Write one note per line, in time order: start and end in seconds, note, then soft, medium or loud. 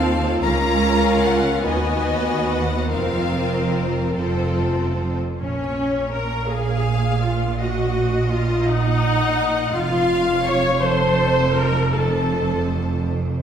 0.00 0.38 D#2 medium
0.00 0.39 D#2 medium
0.00 0.41 C4 medium
0.00 0.41 F4 medium
0.00 0.40 A4 medium
0.00 0.40 F5 medium
0.42 1.60 C#2 medium
0.42 1.61 C#4 medium
0.42 1.61 F4 medium
0.42 1.60 A#4 medium
0.42 1.59 F5 medium
0.42 1.19 A#5 loud
1.23 1.64 F#5 loud
1.63 2.88 D#2 medium
1.63 2.91 B3 medium
1.63 2.91 F#4 medium
1.63 2.90 B4 medium
1.63 2.90 D#5 medium
1.63 2.47 G#5 medium
2.48 2.90 F#5 medium
2.89 4.15 F1 medium
2.89 4.15 F2 medium
2.89 4.14 C4 medium
2.89 4.14 F4 medium
2.89 4.13 A#4 medium
2.89 4.14 C5 medium
2.89 4.14 F5 medium
4.16 5.17 F1 medium
4.16 4.55 F2 medium
4.16 5.17 C4 medium
4.16 5.17 F4 medium
4.16 5.16 A4 medium
4.16 5.16 C5 medium
4.58 5.00 F#2 medium
5.01 5.40 F2 medium
5.39 9.69 A#1 medium
5.39 9.69 A#2 medium
5.39 6.10 C#4 medium
5.39 6.10 C#5 medium
5.39 6.47 C#5 medium
6.14 6.51 A#4 medium
6.14 6.50 A#5 medium
6.50 7.23 G#4 medium
6.50 7.59 F5 medium
6.50 7.24 G#5 medium
7.23 7.60 F4 medium
7.23 7.60 F5 medium
7.59 8.31 F#4 medium
7.59 8.65 D#5 medium
7.59 8.32 F#5 medium
8.32 8.67 F4 medium
8.32 8.67 F5 medium
8.66 9.74 D#4 loud
8.66 9.73 D#5 medium
8.66 9.73 F#5 medium
9.72 13.42 F1 medium
9.72 13.42 F2 medium
9.72 10.43 F4 loud
9.72 10.44 F5 loud
9.72 10.81 F5 medium
10.44 10.82 C#5 loud
10.44 10.81 C#6 medium
10.81 11.92 A4 medium
10.81 11.55 C5 medium
10.81 11.54 C6 medium
11.56 11.92 A#4 medium
11.56 11.92 A#5 medium
11.92 13.07 A4 medium
11.92 13.42 C5 medium
11.92 13.04 A5 medium